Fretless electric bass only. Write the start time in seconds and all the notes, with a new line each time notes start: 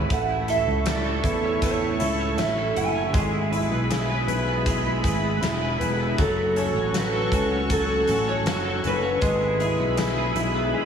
0.10 A1
0.67 C#2
1.24 E2
2.00 C#2
2.39 A1
2.77 F#1
3.14 G#1
3.71 B1
4.28 B1
5.04 G#1
5.42 E1
5.81 E1
6.19 F#1
6.74 A1
7.32 C#2
8.09 A1
8.46 F#1
8.84 F#1
9.22 G#1
9.79 B1
10.35 B1